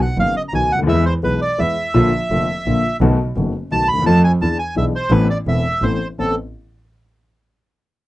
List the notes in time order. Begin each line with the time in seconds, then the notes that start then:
0.02 F#5
0.18 F#1 F#2 D#3 F#3 B3 F#4 F5
0.37 D#5
0.48 A#5
0.53 B1 B2 D#3 F#3 B3 F#4 G#5
0.70 D2 F#5
0.74 C#2
0.79 D2
0.83 D#2 E3
0.87 E2 G#3 B3 G#4 E5
1.06 C5
1.23 B1 B2 E3 G#3 B3 G#4 B4
1.42 D5
1.58 E2 E3 G#3 B3 G#4 E5
1.94 A#1 A#2 D3 F3 A#3 F4
2.30 F1 F2 D3 F3 A#3 F4
2.66 A#1 A#2 D3 F3 A#3 F4
3.01 B1 B2 D#3 A3 B3 F#4
3.36 F#1 F#2 D#3 A3 B3 F#4
3.71 B1 B2 D#3 A3 B3 F#4 A5
3.88 D#2 B5
3.93 D2
3.98 D#2 E2
4.06 F2 F3 A3 C4 A4 A5
4.24 G#5
4.41 E2 E3 B3 D4 G#4 A5
4.59 G#5
4.76 B1 B2 E3 B3 D4 G#4 E5
4.96 C5
5.10 A1 A2 E3 B3 C4 A4 B4
5.30 D5
5.47 E1 E2 E3 B3 C4 A4 E5
5.82 A1 A2 E3 B3 C4 A4 C5
6.18 A1 B3 C4 A4